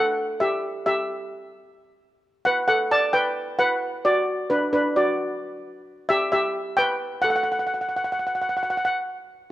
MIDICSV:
0, 0, Header, 1, 2, 480
1, 0, Start_track
1, 0, Key_signature, 2, "major"
1, 0, Tempo, 454890
1, 187, Time_signature, 4, 2, 24, 8
1, 10039, End_track
2, 0, Start_track
2, 0, Title_t, "Steel pan"
2, 0, Program_c, 0, 114
2, 0, Note_on_c, 0, 69, 87
2, 0, Note_on_c, 0, 78, 105
2, 390, Note_off_c, 0, 78, 0
2, 397, Note_off_c, 0, 69, 0
2, 424, Note_on_c, 0, 76, 86
2, 435, Note_on_c, 0, 67, 71
2, 871, Note_off_c, 0, 76, 0
2, 877, Note_off_c, 0, 67, 0
2, 908, Note_on_c, 0, 76, 79
2, 914, Note_on_c, 0, 67, 65
2, 1824, Note_off_c, 0, 76, 0
2, 1827, Note_off_c, 0, 67, 0
2, 2586, Note_on_c, 0, 78, 93
2, 2600, Note_on_c, 0, 71, 75
2, 2694, Note_off_c, 0, 78, 0
2, 2704, Note_off_c, 0, 71, 0
2, 2824, Note_on_c, 0, 78, 96
2, 2832, Note_on_c, 0, 69, 70
2, 3052, Note_off_c, 0, 69, 0
2, 3071, Note_off_c, 0, 78, 0
2, 3075, Note_on_c, 0, 81, 98
2, 3078, Note_on_c, 0, 74, 78
2, 3295, Note_off_c, 0, 74, 0
2, 3303, Note_on_c, 0, 79, 99
2, 3310, Note_on_c, 0, 71, 84
2, 3317, Note_off_c, 0, 81, 0
2, 3753, Note_off_c, 0, 71, 0
2, 3784, Note_on_c, 0, 78, 98
2, 3791, Note_on_c, 0, 71, 88
2, 3798, Note_off_c, 0, 79, 0
2, 4230, Note_off_c, 0, 78, 0
2, 4234, Note_off_c, 0, 71, 0
2, 4272, Note_on_c, 0, 74, 89
2, 4276, Note_on_c, 0, 66, 70
2, 4717, Note_off_c, 0, 66, 0
2, 4747, Note_on_c, 0, 71, 88
2, 4755, Note_on_c, 0, 62, 62
2, 4762, Note_off_c, 0, 74, 0
2, 4854, Note_off_c, 0, 71, 0
2, 4860, Note_off_c, 0, 62, 0
2, 4990, Note_on_c, 0, 62, 67
2, 4990, Note_on_c, 0, 71, 87
2, 5210, Note_off_c, 0, 62, 0
2, 5234, Note_off_c, 0, 71, 0
2, 5236, Note_on_c, 0, 74, 81
2, 5239, Note_on_c, 0, 66, 64
2, 5677, Note_off_c, 0, 74, 0
2, 5678, Note_off_c, 0, 66, 0
2, 6424, Note_on_c, 0, 76, 106
2, 6438, Note_on_c, 0, 67, 83
2, 6532, Note_off_c, 0, 76, 0
2, 6543, Note_off_c, 0, 67, 0
2, 6668, Note_on_c, 0, 76, 94
2, 6680, Note_on_c, 0, 67, 76
2, 7112, Note_off_c, 0, 76, 0
2, 7119, Note_off_c, 0, 67, 0
2, 7141, Note_on_c, 0, 79, 107
2, 7159, Note_on_c, 0, 71, 87
2, 7598, Note_off_c, 0, 71, 0
2, 7614, Note_on_c, 0, 78, 101
2, 7637, Note_off_c, 0, 79, 0
2, 7641, Note_on_c, 0, 69, 69
2, 7693, Note_off_c, 0, 78, 0
2, 7706, Note_on_c, 0, 78, 71
2, 7707, Note_off_c, 0, 69, 0
2, 7752, Note_off_c, 0, 78, 0
2, 7764, Note_on_c, 0, 78, 74
2, 7832, Note_off_c, 0, 78, 0
2, 7844, Note_on_c, 0, 78, 65
2, 7921, Note_off_c, 0, 78, 0
2, 7934, Note_on_c, 0, 78, 65
2, 8000, Note_off_c, 0, 78, 0
2, 8012, Note_on_c, 0, 78, 61
2, 8078, Note_off_c, 0, 78, 0
2, 8090, Note_on_c, 0, 78, 60
2, 8155, Note_off_c, 0, 78, 0
2, 8167, Note_on_c, 0, 78, 52
2, 8230, Note_off_c, 0, 78, 0
2, 8243, Note_on_c, 0, 78, 61
2, 8310, Note_off_c, 0, 78, 0
2, 8323, Note_on_c, 0, 78, 55
2, 8392, Note_off_c, 0, 78, 0
2, 8404, Note_on_c, 0, 78, 68
2, 8476, Note_off_c, 0, 78, 0
2, 8488, Note_on_c, 0, 78, 59
2, 8557, Note_off_c, 0, 78, 0
2, 8570, Note_on_c, 0, 78, 65
2, 8633, Note_off_c, 0, 78, 0
2, 8646, Note_on_c, 0, 78, 55
2, 8711, Note_off_c, 0, 78, 0
2, 8724, Note_on_c, 0, 78, 62
2, 8798, Note_off_c, 0, 78, 0
2, 8811, Note_on_c, 0, 78, 58
2, 8867, Note_off_c, 0, 78, 0
2, 8879, Note_on_c, 0, 78, 62
2, 8948, Note_off_c, 0, 78, 0
2, 8961, Note_on_c, 0, 78, 60
2, 9028, Note_off_c, 0, 78, 0
2, 9040, Note_on_c, 0, 78, 69
2, 9093, Note_off_c, 0, 78, 0
2, 9106, Note_on_c, 0, 78, 62
2, 9169, Note_off_c, 0, 78, 0
2, 9182, Note_on_c, 0, 78, 70
2, 9245, Note_off_c, 0, 78, 0
2, 9258, Note_on_c, 0, 78, 67
2, 9325, Note_off_c, 0, 78, 0
2, 9338, Note_on_c, 0, 78, 78
2, 9426, Note_off_c, 0, 78, 0
2, 10039, End_track
0, 0, End_of_file